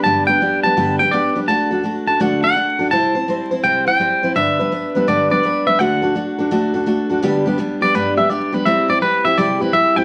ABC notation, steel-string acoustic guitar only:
X:1
M:4/4
L:1/8
Q:"Swing" 1/4=167
K:G
V:1 name="Steel-string acoustic guitar"
[G,,D,G,B,DG] [G,B,DG] [G,B,DG] [G,B,DG] [G,,D,G,B,DG] [G,B,DG] [G,B,DG] [G,B,DG] | [D,A,DFA] [DFA] [A,DFA] [DFA] [D,A,DFA] [DFA] [A,DFA] [DFA] | [C,G,CEc] [CEc] [G,CEc] [CEc] [C,G,CEc] [CEc] [G,CEc] [CEc] | [G,,D,G,B,DB] [G,B,DB] [G,B,DB] [G,B,DB] [G,,D,G,B,DB] [G,B,DB] [G,B,DB] [G,B,DB] |
[D,A,DFA] [DFA] [A,DFA] [DFA] [D,A,DFA] [DFA] [A,DFA] [DFA] | [G,,D,G,B,DG] [G,B,DG] [G,B,DG] [G,B,DG] [G,,D,G,B,DG] [G,B,DG] [G,B,DG] [G,B,DG] | [C,G,CEG] [CEG] [G,CEG] [CEG] [C,G,CEG] [CEG] [G,CEG] [CEG] |]